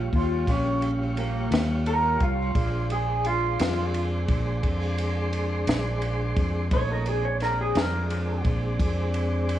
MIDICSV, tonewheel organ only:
0, 0, Header, 1, 2, 480
1, 0, Start_track
1, 0, Tempo, 694444
1, 1763, Time_signature, 12, 3, 24, 8
1, 6629, End_track
2, 0, Start_track
2, 0, Title_t, "Tonewheel organ"
2, 0, Program_c, 0, 16
2, 0, Note_on_c, 0, 55, 62
2, 0, Note_on_c, 0, 65, 63
2, 0, Note_on_c, 0, 73, 59
2, 1741, Note_off_c, 0, 65, 0
2, 1741, Note_off_c, 0, 73, 0
2, 1743, Note_off_c, 0, 55, 0
2, 1763, Note_on_c, 0, 56, 64
2, 1763, Note_on_c, 0, 62, 66
2, 1764, Note_on_c, 0, 72, 70
2, 4614, Note_off_c, 0, 56, 0
2, 4614, Note_off_c, 0, 62, 0
2, 4615, Note_off_c, 0, 72, 0
2, 4645, Note_on_c, 0, 57, 58
2, 4648, Note_on_c, 0, 63, 61
2, 4649, Note_on_c, 0, 61, 58
2, 4883, Note_off_c, 0, 57, 0
2, 4884, Note_on_c, 0, 60, 67
2, 4885, Note_off_c, 0, 61, 0
2, 4885, Note_off_c, 0, 63, 0
2, 4885, Note_on_c, 0, 62, 70
2, 4888, Note_on_c, 0, 56, 66
2, 6629, Note_off_c, 0, 56, 0
2, 6629, Note_off_c, 0, 60, 0
2, 6629, Note_off_c, 0, 62, 0
2, 6629, End_track
0, 0, End_of_file